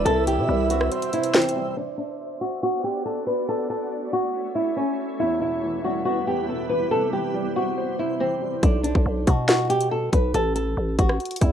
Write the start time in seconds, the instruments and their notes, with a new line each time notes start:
Already playing: ambient pad E5
0.05 808-style bass C2, grand piano C3, nylon-string guitar A4, soft synth lead E5, closed hi-hat
0.27 grand piano E3, nylon-string guitar G4, closed hi-hat
0.38 808-style bass C3
0.49 808-style bass C2, grand piano G3
0.70 grand piano C4, nylon-string guitar F#4, closed hi-hat
0.81 cross-stick
0.91 soft synth lead C5, grand piano C5, closed hi-hat
1.02 closed hi-hat
1.13 grand piano C3, nylon-string guitar E4, closed hi-hat
1.24 closed hi-hat
1.34 grand piano E3, nylon-string guitar C4, snare, closed hi-hat
1.42 closed hi-hat
1.49 closed hi-hat
1.56 grand piano G3
1.77 nylon-string guitar D4
1.98 nylon-string guitar D4
2.41 nylon-string guitar F#4
2.63 nylon-string guitar F#4
2.84 nylon-string guitar G4
3.06 nylon-string guitar A4
3.27 nylon-string guitar B4
3.49 nylon-string guitar A4
3.70 nylon-string guitar A4
4.13 nylon-string guitar F#4
4.55 nylon-string guitar E4
4.77 nylon-string guitar C#4
5.20 grand piano E2, ambient pad G3 E4, nylon-string guitar E4
5.42 grand piano B2, nylon-string guitar E4
5.63 grand piano E3
5.84 grand piano G3, nylon-string guitar F#4
6.05 grand piano B3, nylon-string guitar F#4
6.27 grand piano E2, nylon-string guitar G4
6.48 grand piano B2, nylon-string guitar A4
6.69 grand piano E3, nylon-string guitar B4
6.91 grand piano C3, nylon-string guitar A4
7.13 grand piano E3, nylon-string guitar G4
7.34 grand piano G3
7.56 grand piano C4, nylon-string guitar F#4
7.78 grand piano C5
7.99 grand piano C3, nylon-string guitar E4
8.20 grand piano E3, nylon-string guitar C4
8.42 grand piano G3
8.63 808-style bass B1, nylon-string guitar D4, kick, closed hi-hat
8.83 nylon-string guitar D4, closed hi-hat
8.95 808-style bass B1, kick
9.06 808-style bass B1
9.27 808-style bass B2, nylon-string guitar F#4, kick, closed hi-hat
9.49 nylon-string guitar F#4, snare, closed hi-hat
9.70 nylon-string guitar G4, closed hi-hat
9.81 closed hi-hat
9.91 nylon-string guitar A4
10.12 808-style bass B1, nylon-string guitar B4, kick, closed hi-hat
10.34 808-style bass A1, nylon-string guitar A4, closed hi-hat
10.56 nylon-string guitar A4, closed hi-hat
10.77 808-style bass A1
10.99 808-style bass A1, nylon-string guitar F#4, kick, closed hi-hat
11.09 cross-stick
11.20 closed hi-hat
11.25 closed hi-hat
11.31 closed hi-hat
11.36 closed hi-hat
11.41 808-style bass E2, nylon-string guitar E4, kick, closed hi-hat